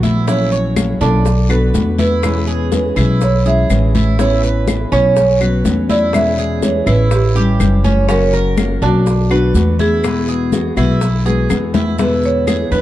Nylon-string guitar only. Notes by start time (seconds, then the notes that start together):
Already playing: D3 A3 B3 F#4
0.27 F#3 A#3 C#4 E4
0.76 F#3 A#3 C#4 E4
1.01 A#3 C#4 E4
1.25 muted nylon-string guitar stroke
1.49 D3 B3 D4 F#4
1.74 D3 B3 D4 F#4
2.23 B2 E3 G#3 C#4 E4
2.72 E3 G#3 C#4 E4
2.97 E3 G#3 C#4 E4
3.21 muted nylon-string guitar stroke
3.46 E3 G#3 C#4 E4
3.70 E3 G#3 C#4 E4
4.18 E3 B3 C#4 E4
4.67 E3 B3 C#4 E4
4.92 B3 C#4 E4
5.17 muted nylon-string guitar stroke
5.41 F#3 B3 C#4 F#4
5.65 F#3 B3 C#4 F#4
6.13 B2 E3 G#3 C#4 E4
6.62 E3 G#3 C#4 E4
6.86 E3 G#3 C#4 E4
7.11 muted nylon-string guitar stroke
7.35 G3 C#4 E4
7.59 E3 G3 C#4 E4
8.09 C#3 F#3 A#3 C#4 F#4
8.57 F#3 A#3 C#4 F#4
8.82 F#3 A#3 C#4 F#4
9.06 muted nylon-string guitar stroke
9.30 D3 B3 D4 F#4
9.55 D3 B3 D4 F#4
10.03 B2 E3 G#3 B3 F#4
10.52 E3 G#3 B3 F#4
10.76 E3 G#3 B3 F#4
11.01 muted nylon-string guitar stroke
11.25 E3 G#3 B3 F#4
11.50 E3 G#3 B3 F#4
11.98 B2 D3 G#3 B3 E4
12.47 D3 G#3 B3 E4
12.71 D3 G#3 B3 E4